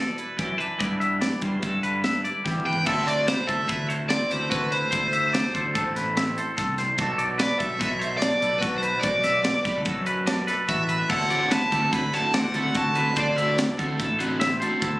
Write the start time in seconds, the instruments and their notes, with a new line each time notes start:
Already playing: clean electric guitar B2 E3 G3 D4 E4 D5
0.00 clean electric guitar A4
0.17 clean electric guitar E4 B4, closed hi-hat
0.38 fingered electric bass F#2, clean electric guitar E3 E4 G4, kick, closed hi-hat
0.58 clean electric guitar D4 B4, closed hi-hat
0.79 clean electric guitar G2 G3 B3 E4 B4 D5, fingered electric bass G2, kick, closed hi-hat
1.00 clean electric guitar B3 E5, closed hi-hat
1.21 clean electric guitar D5, snare, closed hi-hat
1.42 fingered electric bass G2, clean electric guitar G3 C5, kick, closed hi-hat
1.63 fingered electric bass G2, clean electric guitar A4, kick, closed hi-hat
1.82 clean electric guitar D3 B4, closed hi-hat
2.04 clean electric guitar B4 E5, snare, closed hi-hat
2.24 clean electric guitar E4 D5, closed hi-hat
2.44 fingered electric bass E2, clean electric guitar G2 E4 G4, kick, snare
2.60 mid tom
2.65 clean electric guitar B3 B4, overdriven electric guitar G5
2.73 floor tom
2.86 fingered electric bass D2, clean electric guitar D3 F#3 C4 E4 A4, overdriven electric guitar E5, kick, crash
3.07 overdriven electric guitar D5, clean electric guitar D5, closed hi-hat
3.28 clean electric guitar F#3 B4, overdriven electric guitar C5, snare, closed hi-hat
3.47 fingered electric bass D2, clean electric guitar A4, overdriven electric guitar E5, kick, closed hi-hat
3.68 fingered electric bass D2, clean electric guitar E4 B4, kick, closed hi-hat
3.89 clean electric guitar A2 C5, closed hi-hat
4.09 clean electric guitar C4 D5, overdriven electric guitar D5, snare, closed hi-hat
4.30 fingered electric bass D2, clean electric guitar G4 B4, overdriven electric guitar C5, closed hi-hat
4.41 clean electric guitar A4
4.50 fingered electric bass D2, clean electric guitar D3 E4 F#4, overdriven electric guitar B4, kick, closed hi-hat
4.71 clean electric guitar B4, overdriven electric guitar C5, closed hi-hat
4.91 fingered electric bass D2, clean electric guitar D3 E4 C5, kick, closed hi-hat
5.13 clean electric guitar E5, closed hi-hat
5.33 clean electric guitar F#3 D5, snare, closed hi-hat
5.54 fingered electric bass D2, clean electric guitar A4 C5, kick, closed hi-hat
5.73 fingered electric bass A1, clean electric guitar D4 A4, kick, closed hi-hat
5.84 clean electric guitar E4
5.96 clean electric guitar A2 B4, snare, closed hi-hat
6.16 clean electric guitar C4 E5, snare, closed hi-hat
6.38 clean electric guitar A4 C5, closed hi-hat
6.57 fingered electric bass C2, clean electric guitar D3 A4, kick, snare, closed hi-hat
6.78 clean electric guitar C3 C5, snare, closed hi-hat
6.98 fingered electric bass B1, clean electric guitar B2 F#3 D4 F#4 A4, kick, closed hi-hat
7.18 clean electric guitar D5, closed hi-hat
7.38 clean electric guitar F#3 B4, overdriven electric guitar D5, snare, closed hi-hat
7.59 fingered electric bass B1, clean electric guitar A4, overdriven electric guitar E5, kick, closed hi-hat
7.79 fingered electric bass B1, clean electric guitar F#4 B4, kick, snare, closed hi-hat
7.99 clean electric guitar B2 C5, closed hi-hat
8.18 clean electric guitar D4 D5, overdriven electric guitar D5
8.22 snare, closed hi-hat
8.41 fingered electric bass B1, clean electric guitar A4 B4, closed hi-hat
8.58 clean electric guitar B2 F#4, overdriven electric guitar B4
8.62 fingered electric bass B1, clean electric guitar F#4, kick, snare, closed hi-hat
8.78 overdriven electric guitar C5
8.83 clean electric guitar B4, closed hi-hat
9.00 clean electric guitar B2 F#4 D5, overdriven electric guitar D5, kick, closed hi-hat
9.04 fingered electric bass B1
9.24 clean electric guitar E5, snare, closed hi-hat
9.44 clean electric guitar F#3 D5, snare, closed hi-hat
9.64 fingered electric bass B1, clean electric guitar G4 B4, kick, snare, closed hi-hat
9.75 clean electric guitar A4
9.85 fingered electric bass F#2, clean electric guitar F#4 A4, kick, closed hi-hat
10.06 clean electric guitar B2 B4, closed hi-hat
10.26 clean electric guitar D4 D5, snare, closed hi-hat
10.47 clean electric guitar A4 B4, snare, closed hi-hat
10.68 fingered electric bass A1, clean electric guitar B2 F#4, overdriven electric guitar E5, kick, closed hi-hat
10.89 clean electric guitar B4, closed hi-hat
11.09 fingered electric bass D2, clean electric guitar D3 F#3 C4 E4 A4, overdriven electric guitar F#5, kick, crash
11.30 overdriven electric guitar D3 A3 C4 F#4, clean electric guitar D5, closed hi-hat
11.50 clean electric guitar F#3 B4, overdriven electric guitar A5, snare, closed hi-hat
11.72 fingered electric bass D2, overdriven electric guitar D3 A3 C4 F#4, clean electric guitar G4 A4, kick, snare, closed hi-hat
11.81 clean electric guitar A4
11.92 fingered electric bass D2, clean electric guitar E4 B4, overdriven electric guitar B5, kick, snare, closed hi-hat
12.13 clean electric guitar A2 C5, overdriven electric guitar D3 A3 C4 F#4 A5, snare, closed hi-hat
12.34 clean electric guitar C4 D5, overdriven electric guitar F#5, snare, closed hi-hat
12.54 fingered electric bass D2, overdriven electric guitar D3 A3 C4 F#4, clean electric guitar A4 B4, closed hi-hat
12.74 fingered electric bass D2, clean electric guitar D3 E4 F#4, overdriven electric guitar A5, kick, snare, closed hi-hat
12.95 overdriven electric guitar D3 A3 C4 F#4, clean electric guitar B4, closed hi-hat
13.16 fingered electric bass D2, clean electric guitar D3 D4 C5, overdriven electric guitar D5, kick, closed hi-hat
13.27 clean electric guitar E4
13.36 overdriven electric guitar D3 A3 C4 F#4, clean electric guitar E5, closed hi-hat
13.58 clean electric guitar F#3 D5, snare, closed hi-hat
13.78 fingered electric bass D2, overdriven electric guitar D3 A3 C4 F#4, clean electric guitar A4 C5, kick, closed hi-hat
13.99 fingered electric bass A1, clean electric guitar E4 A4, kick, snare, closed hi-hat
14.19 clean electric guitar A2 B4, overdriven electric guitar D3 A3 C4 F#4, closed hi-hat
14.40 clean electric guitar C4 E5, snare, closed hi-hat
14.60 overdriven electric guitar D3 A3 C4 F#4, clean electric guitar A4 C5, closed hi-hat
14.81 fingered electric bass D2, clean electric guitar D3 E4 A4, kick, closed hi-hat